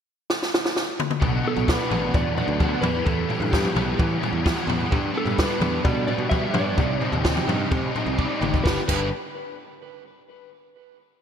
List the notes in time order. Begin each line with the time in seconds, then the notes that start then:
0.30 snare
0.43 snare
0.54 snare
0.65 snare
0.76 snare
1.00 mid tom
1.11 mid tom
1.20 B1 B2 F#3 B3 D4 F#4, kick, floor tom
1.42 B3 D4 F#4
1.48 A4
1.56 B1, floor tom
1.67 F#3 B3 D4 F#4 B4, kick, snare
1.88 A1 B3 D4 F#4, floor tom, mid tom
2.13 E2 F#3 D5, kick, floor tom
2.36 B3 D4 F#4 D5, floor tom
2.48 D2
2.59 B2 F#3 B3 D4 F#4, kick, mid tom
2.81 E2 B3 E4 B4, floor tom, mid tom
2.85 E3 G3
3.04 E2 E3 G3 B3 E4 A4, kick, floor tom
3.29 G3 B3 E4, floor tom
3.40 G2, floor tom
3.51 E3 G3 B3 G4, kick, snare, floor tom
3.56 E4
3.65 mid tom
3.75 B1 G3 B3 E4, floor tom, mid tom
3.98 E3, kick, floor tom
4.21 G3 B3 E4, floor tom
4.32 E2
4.44 E3 G3 B3 E4 F#4, kick, snare, mid tom
4.67 E2 B3, floor tom, mid tom
4.81 floor tom
4.91 G2 D3 G3 B3 D4 G4 D5 B5 D6, kick, floor tom
5.14 G3 B3 D4 A4
5.25 G2, floor tom
5.37 D3 G3 B3 D4 B4, kick, snare
5.60 E2 B3 D4, floor tom, mid tom
5.65 G3
5.84 B2 G3 D5, kick, floor tom
6.06 B3 D4 D5, floor tom
6.10 G3
6.18 B2
6.29 G2 D3 G3 B3 G4 E5, kick, mid tom
6.33 D4
6.53 G2 D4 D5, floor tom, mid tom
6.77 C2 C3 G3 C4 D#4 C6, kick, floor tom
7.00 G3 C4 D#4 C5, floor tom
7.12 D#2, floor tom
7.24 C3 G3 C4 D#4 G4, kick, snare, floor tom
7.37 mid tom
7.48 G2 C4 D#4, floor tom, mid tom
7.52 G3
7.71 C3 C4, kick, floor tom
7.95 G3 C4 D#4, floor tom
8.06 C2
8.17 C3 G3 C4 D#4 D5, kick
8.41 G#1 G4, mid tom
8.54 kick
8.64 G1 G2 D3 G3 B3 D4 G4 B4 G5, kick, snare
8.87 G1 G2 D3 G3 B3 D4 G4 B4, kick, crash